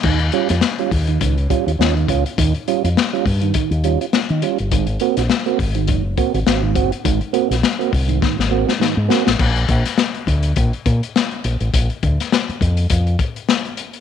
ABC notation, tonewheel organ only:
X:1
M:4/4
L:1/16
Q:"Swing 16ths" 1/4=103
K:Eb
V:1 name="Tonewheel organ"
E, z [G,_DF] [DF] z [G,DF] z E, E, z [G,DF] [DF] [DF] E, [DF] z | E, z [G,_DF] [DF] z [G,DF] z E, E, z [G,DF] [DF] [DF] E, [G,DF] z | [A,,E,] z [B,C_G] [CG] z [B,CG] z [A,,E,] [A,,E,] z [B,CG] [CG] [CG] [A,,E,] [CG] z | [A,,E,] z [B,C_G] [CG] z [B,CG] z [A,,E,] [A,,E,] z [B,CG] [CG] [A,,E,] z [B,CG] [CG] |
z16 | z16 |]